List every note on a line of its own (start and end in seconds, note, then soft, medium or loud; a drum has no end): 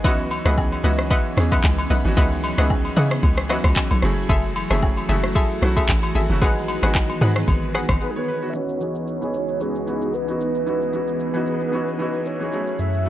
0.00 3.99 F#4 medium
0.00 0.18 G#5 medium
0.04 0.41 C#2 loud
0.04 0.37 E3 medium
0.04 6.38 F#3 medium
0.04 3.99 B3 medium
0.04 0.37 B3 medium
0.04 3.99 C#4 medium
0.04 0.37 C#4 medium
0.04 0.38 D#4 medium
0.04 0.38 F#4 loud
0.04 0.19 B4 loud
0.04 0.19 D#5 medium
0.04 0.19 E5 medium
0.04 0.20 F#5 loud
0.04 kick loud
0.04 high agogo medium
0.04 shaker medium
0.19 shaker medium
0.31 open hi-hat medium
0.31 high agogo medium
0.31 shaker medium
0.45 0.80 C#2 loud
0.45 0.77 E3 medium
0.45 0.77 B3 medium
0.45 0.78 C#4 medium
0.45 0.78 D#4 medium
0.45 0.78 G#4 medium
0.45 0.58 B4 medium
0.45 0.58 D#5 medium
0.45 0.58 E5 medium
0.45 0.58 F#5 medium
0.45 cross-stick loud
0.45 shaker medium
0.57 kick medium
0.57 low woodblock medium
0.57 shaker medium
0.72 high agogo medium
0.72 shaker medium
0.83 1.20 C#2 medium
0.83 1.27 E3 medium
0.83 1.28 B3 medium
0.83 1.28 C#4 medium
0.83 1.29 D#4 medium
0.83 1.29 F#4 loud
0.83 0.99 B4 medium
0.83 0.99 D#5 medium
0.83 0.99 E5 medium
0.83 0.99 F#5 medium
0.83 open hi-hat medium
0.83 shaker loud
0.98 cross-stick medium
0.98 shaker soft
1.10 1.48 B4 medium
1.10 1.48 D#5 medium
1.10 1.48 E5 medium
1.10 1.49 F#5 loud
1.10 kick loud
1.10 high agogo medium
1.10 shaker medium
1.25 shaker medium
1.37 1.61 E2 medium
1.37 1.90 E3 medium
1.37 1.90 B3 medium
1.37 1.91 C#4 medium
1.37 1.91 D#4 medium
1.37 1.92 G#4 loud
1.37 cross-stick loud
1.37 open hi-hat medium
1.37 shaker loud
1.52 1.64 B4 medium
1.52 1.64 D#5 medium
1.52 1.64 E5 medium
1.52 1.64 F#5 medium
1.52 kick medium
1.52 high agogo medium
1.52 shaker medium
1.63 1.87 C#2 medium
1.63 kick medium
1.63 clap medium
1.63 low woodblock medium
1.63 shaker medium
1.78 high agogo medium
1.78 shaker medium
1.90 2.03 B1 loud
1.90 2.05 B4 medium
1.90 2.05 D#5 medium
1.90 2.05 E5 medium
1.90 2.05 F#5 medium
1.90 open hi-hat soft
1.90 shaker medium
2.05 2.16 G#1 medium
2.05 2.14 E3 medium
2.05 2.15 B3 medium
2.05 2.15 C#4 medium
2.05 2.15 D#4 medium
2.05 2.16 F#4 loud
2.05 shaker medium
2.16 2.53 C#2 loud
2.16 2.50 D#3 medium
2.16 2.49 E3 medium
2.16 2.49 B3 medium
2.16 2.50 C#4 medium
2.16 2.50 G#4 loud
2.16 2.55 B4 loud
2.16 2.55 D#5 medium
2.16 2.55 E5 medium
2.16 2.55 F#5 loud
2.16 kick loud
2.16 high agogo medium
2.16 shaker medium
2.32 shaker medium
2.44 open hi-hat medium
2.44 high agogo medium
2.44 shaker medium
2.58 2.92 C#2 medium
2.58 2.89 E3 medium
2.58 2.90 B3 medium
2.58 2.90 C#4 medium
2.58 2.90 D#4 medium
2.58 2.91 G#4 loud
2.58 2.70 B4 medium
2.58 2.71 D#5 medium
2.58 2.71 E5 medium
2.58 2.71 F#5 medium
2.58 cross-stick loud
2.58 shaker medium
2.70 kick medium
2.70 low woodblock medium
2.70 shaker medium
2.85 high agogo medium
2.85 shaker medium
2.96 3.20 C#3 loud
2.96 3.40 E3 medium
2.96 3.40 B3 medium
2.96 3.41 C#4 medium
2.96 3.41 D#4 medium
2.96 3.41 G#4 loud
2.96 3.11 B4 medium
2.96 3.11 D#5 medium
2.96 3.12 E5 medium
2.96 3.12 F#5 medium
2.96 open hi-hat medium
2.96 shaker medium
3.11 cross-stick loud
3.11 shaker soft
3.23 3.60 C#2 medium
3.23 kick loud
3.23 high agogo medium
3.23 shaker medium
3.38 cross-stick loud
3.38 shaker medium
3.49 4.02 E3 medium
3.49 4.03 B3 medium
3.49 4.02 C#4 medium
3.49 4.04 D#4 medium
3.49 4.04 F#4 loud
3.49 3.64 B4 medium
3.49 3.64 D#5 medium
3.49 3.65 E5 medium
3.49 3.65 F#5 medium
3.49 cross-stick loud
3.49 open hi-hat medium
3.49 shaker loud
3.64 3.75 C#2 medium
3.64 kick medium
3.64 cross-stick loud
3.64 high agogo medium
3.64 shaker medium
3.76 kick medium
3.76 clap loud
3.76 low woodblock medium
3.76 shaker medium
3.91 4.01 B1 medium
3.91 high agogo medium
3.91 shaker medium
4.02 4.26 F#1 loud
4.02 8.50 E3 medium
4.02 4.56 F#3 medium
4.02 6.39 A3 medium
4.02 4.56 A3 medium
4.02 4.56 C#4 medium
4.02 4.57 E4 medium
4.02 8.50 F#4 loud
4.02 4.57 G#4 loud
4.02 cross-stick medium
4.02 open hi-hat soft
4.02 shaker medium
4.17 shaker medium
4.29 4.66 F#1 loud
4.29 4.44 G#4 medium
4.29 4.44 A4 medium
4.29 4.44 E5 loud
4.29 kick loud
4.29 high agogo medium
4.29 shaker medium
4.44 shaker medium
4.56 open hi-hat medium
4.56 high agogo medium
4.56 shaker medium
4.70 5.05 F#1 loud
4.70 5.02 F#3 medium
4.70 5.02 A3 medium
4.70 5.02 C#4 medium
4.70 5.03 E4 medium
4.70 4.83 G#4 medium
4.70 5.03 G#4 loud
4.70 4.83 A4 medium
4.70 4.83 E5 medium
4.70 cross-stick loud
4.70 shaker medium
4.82 kick medium
4.82 low woodblock medium
4.82 shaker medium
4.97 high agogo medium
4.97 shaker medium
5.09 5.45 F#1 loud
5.09 5.52 F#3 medium
5.09 5.53 A3 medium
5.09 5.53 C#4 medium
5.09 5.53 E4 medium
5.09 5.54 F#4 medium
5.09 5.24 G#4 medium
5.09 5.24 A4 medium
5.09 5.24 E5 medium
5.09 open hi-hat medium
5.09 shaker loud
5.23 cross-stick medium
5.23 shaker soft
5.35 5.73 G#4 medium
5.35 5.73 A4 medium
5.35 5.73 E5 loud
5.35 kick loud
5.35 high agogo medium
5.35 shaker medium
5.50 shaker medium
5.61 5.86 B1 loud
5.61 6.15 F#3 medium
5.61 6.15 A3 medium
5.61 6.16 C#4 medium
5.61 6.16 E4 medium
5.61 6.16 F#4 loud
5.61 cross-stick loud
5.61 open hi-hat medium
5.61 shaker loud
5.77 5.89 G#4 medium
5.77 5.89 A4 medium
5.77 5.89 E5 medium
5.77 kick medium
5.77 high agogo medium
5.77 shaker medium
5.88 6.12 A1 loud
5.88 kick medium
5.88 clap loud
5.88 low woodblock medium
5.88 shaker medium
6.03 high agogo medium
6.03 shaker medium
6.15 6.28 G#1 medium
6.15 6.30 G#4 medium
6.15 6.30 A4 medium
6.15 6.30 E5 medium
6.15 open hi-hat soft
6.15 shaker medium
6.29 6.43 F#1 loud
6.29 6.39 F#3 medium
6.29 6.39 A3 medium
6.29 6.40 C#4 medium
6.29 6.40 E4 medium
6.29 6.41 F#4 medium
6.29 shaker medium
6.41 6.78 G#1 loud
6.41 8.52 D#3 medium
6.41 6.74 F#3 medium
6.41 6.74 G#3 medium
6.41 8.52 B3 medium
6.41 6.75 B3 medium
6.41 6.75 D#4 medium
6.41 6.79 G#4 loud
6.41 6.75 G#4 loud
6.41 6.79 B4 medium
6.41 6.80 F#5 loud
6.41 kick loud
6.41 high agogo medium
6.41 shaker medium
6.56 shaker medium
6.68 open hi-hat medium
6.68 high agogo medium
6.68 shaker medium
6.83 7.17 G#1 medium
6.83 7.14 F#3 medium
6.83 7.14 G#3 medium
6.83 7.15 B3 medium
6.83 7.15 D#4 medium
6.83 7.16 F#4 medium
6.83 6.95 G#4 medium
6.83 6.95 B4 medium
6.83 6.95 F#5 medium
6.83 cross-stick loud
6.83 shaker medium
6.95 kick medium
6.95 clap medium
6.95 low woodblock medium
6.95 shaker medium
7.09 high agogo medium
7.09 shaker medium
7.21 7.45 G#2 loud
7.21 7.65 F#3 medium
7.21 7.65 G#3 medium
7.21 7.66 B3 medium
7.21 7.66 D#4 medium
7.21 7.36 G#4 medium
7.21 7.66 G#4 medium
7.21 7.36 B4 medium
7.21 7.36 F#5 medium
7.21 open hi-hat medium
7.21 shaker loud
7.36 cross-stick loud
7.36 shaker soft
7.48 7.84 G#1 medium
7.48 kick loud
7.48 high agogo medium
7.48 shaker medium
7.63 shaker medium
7.74 7.89 G#4 medium
7.74 7.89 B4 medium
7.74 7.90 F#5 medium
7.74 cross-stick medium
7.74 open hi-hat medium
7.74 shaker medium
7.89 8.00 G#1 medium
7.89 kick loud
7.89 cross-stick loud
7.89 high agogo medium
7.89 shaker medium
8.02 8.15 G#4 medium
8.02 8.12 B4 medium
8.11 8.20 G#4 medium
8.16 8.51 B4 loud
8.16 8.27 C#5 medium
8.28 8.42 B4 medium
8.43 8.55 F#4 medium
8.50 8.75 E3 medium
8.50 8.57 E5 medium
8.54 12.48 C#2 medium
8.54 12.48 E3 medium
8.54 8.76 B3 medium
8.54 12.49 B3 medium
8.54 8.76 C#4 medium
8.54 12.48 D#4 medium
8.54 8.77 D#4 medium
8.54 10.65 F#4 medium
8.54 8.77 F#4 medium
8.54 9.63 C#5 loud
8.54 shaker medium
8.69 shaker medium
8.80 9.13 E3 medium
8.80 9.13 B3 medium
8.80 9.13 C#4 medium
8.80 9.14 D#4 medium
8.80 9.14 G#4 medium
8.80 shaker medium
8.95 shaker medium
9.07 shaker medium
9.21 9.53 E3 medium
9.21 9.53 B3 medium
9.21 9.54 C#4 medium
9.21 9.54 D#4 medium
9.21 9.54 G#4 medium
9.21 shaker medium
9.34 shaker medium
9.48 shaker soft
9.60 9.82 E3 medium
9.60 9.82 B3 medium
9.60 9.82 C#4 medium
9.60 9.83 D#4 medium
9.60 9.83 F#4 medium
9.60 10.16 G#4 medium
9.60 shaker medium
9.75 shaker soft
9.86 10.19 E3 medium
9.86 10.19 B3 medium
9.86 10.20 C#4 medium
9.86 10.20 D#4 medium
9.86 10.20 F#4 medium
9.86 shaker medium
10.02 shaker medium
10.13 10.67 B4 loud
10.13 shaker medium
10.27 10.59 E3 medium
10.27 10.59 B3 medium
10.27 10.60 C#4 medium
10.27 10.60 D#4 medium
10.27 10.61 F#4 medium
10.27 shaker medium
10.40 shaker medium
10.55 shaker medium
10.66 10.88 E3 medium
10.66 10.88 B3 medium
10.66 10.89 C#4 medium
10.66 10.89 D#4 medium
10.66 10.89 F#4 medium
10.66 12.50 G#4 medium
10.66 12.28 B4 loud
10.66 shaker medium
10.81 shaker medium
10.93 11.25 E3 medium
10.93 11.26 B3 medium
10.93 11.26 C#4 medium
10.93 11.26 D#4 medium
10.93 11.27 F#4 medium
10.93 shaker medium
11.08 shaker medium
11.20 shaker medium
11.34 11.65 E3 medium
11.34 11.66 B3 medium
11.34 11.66 C#4 medium
11.34 11.66 D#4 medium
11.34 11.67 F#4 loud
11.34 shaker medium
11.46 shaker medium
11.60 shaker soft
11.72 11.94 E3 medium
11.72 11.95 B3 medium
11.72 11.95 C#4 medium
11.72 11.95 D#4 medium
11.72 11.96 F#4 medium
11.72 shaker medium
11.87 shaker soft
11.98 12.31 E3 medium
11.98 12.32 B3 medium
11.98 12.32 C#4 medium
11.98 12.32 D#4 medium
11.98 12.33 F#4 medium
11.98 shaker medium
12.14 shaker medium
12.25 12.79 C#5 loud
12.25 shaker medium
12.40 12.52 E3 medium
12.40 12.52 B3 medium
12.40 12.52 C#4 medium
12.40 12.53 D#4 medium
12.40 12.53 G#4 medium
12.40 shaker medium
12.52 13.09 E3 medium
12.52 12.96 F#3 medium
12.52 13.09 F#3 medium
12.52 12.96 A3 medium
12.52 13.09 A3 medium
12.52 12.96 C#4 medium
12.52 12.97 E4 medium
12.52 13.09 F#4 medium
12.52 12.97 G#4 medium
12.52 shaker medium
12.67 shaker medium
12.79 13.09 F#2 medium
12.79 13.09 E5 loud
12.79 shaker medium
12.94 shaker medium
13.05 13.09 F#3 medium
13.05 13.09 A3 medium
13.05 shaker medium